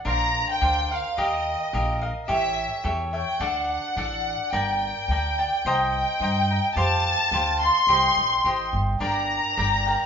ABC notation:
X:1
M:2/4
L:1/16
Q:1/4=107
K:Gm
V:1 name="Violin section"
b3 g3 f2 | e6 z2 | =e4 z2 g2 | ^f2 f6 |
g8- | g2 g6 | a6 c'2- | c'6 z2 |
b8 |]
V:2 name="Cavaquinho"
[DBcf]4 [DBcf]2 [Bcf]2 | [GBef]4 [GBef]2 [Bef]2 | [GA^c=e]4 [GAce]2 [Ace]2 | [DAd^f]4 [DAdf]4 |
[Bdga]4 [Bdga]2 [dga]2 | [cegb]4 [cegb]2 [egb]2 | [Gcfa]4 [Gcfa]2 [cfa]2 | [Gceg]4 [Gceg]4 |
[DBdg]4 [DBdg]2 [Bdg]2 |]
V:3 name="Upright bass" clef=bass
B,,,4 D,,4 | E,,4 B,,,4 | A,,,4 =E,,4 | D,,4 A,,,4 |
G,,,4 D,,4 | C,,4 G,,4 | F,,4 D,,4 | C,,2 B,,,2 A,,,2 G,,,2 |
G,,,4 G,,,4 |]